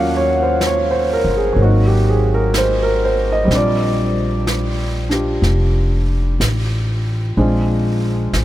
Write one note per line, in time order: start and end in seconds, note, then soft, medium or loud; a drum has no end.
0.00 1.21 D#2 medium
0.00 1.51 F#3 soft
0.00 1.55 A#3 soft
0.00 1.58 C#4 soft
0.00 1.59 F4 medium
0.00 0.26 F5 medium
0.00 1.60 F#5 medium
0.17 0.38 C#5 medium
0.42 0.60 C5 medium
0.61 brush sweep soft
0.61 snare soft
0.61 hi-hat pedal soft
0.66 0.95 C#5 medium
0.91 1.23 C5 medium
1.13 1.35 A#4 medium
1.24 1.55 G1 medium
1.37 1.55 G#4 medium
1.52 3.45 G#1 medium
1.52 3.47 F#3 soft
1.52 3.49 A#3 soft
1.57 3.47 C4 soft
1.57 brush sweep soft
1.62 3.53 D#4 soft
1.62 1.91 F#4 medium
1.87 2.19 G4 medium
2.10 2.31 G#4 medium
2.34 2.52 A#4 medium
2.54 2.87 C5 medium
2.54 brush sweep soft
2.54 snare soft
2.54 hi-hat pedal soft
2.83 3.15 A#4 medium
3.05 3.27 C5 medium
3.32 3.49 D#5 medium
3.45 5.37 A#1 medium
3.45 7.33 G3 soft
3.45 7.35 C4 soft
3.51 5.08 D4 soft
3.51 brush sweep soft
3.51 snare soft
3.55 5.09 F4 soft
3.55 6.38 D5 medium
4.47 brush sweep soft
4.47 snare soft
4.47 hi-hat pedal soft
5.09 7.35 D4 soft
5.09 7.36 F4 soft
5.09 7.37 G4 soft
5.09 snare soft
5.42 6.35 F1 medium
5.42 brush sweep soft
5.42 snare soft
6.40 7.32 A1 medium
6.40 brush sweep soft
6.40 snare soft
6.40 hi-hat pedal soft
7.37 8.29 A#1 medium
7.37 8.45 G#3 soft
7.37 8.45 C4 soft
7.37 8.45 D4 soft
7.37 8.45 F4 soft
7.37 brush sweep soft
8.33 8.45 A1 medium
8.33 brush sweep soft
8.33 snare soft
8.33 hi-hat pedal soft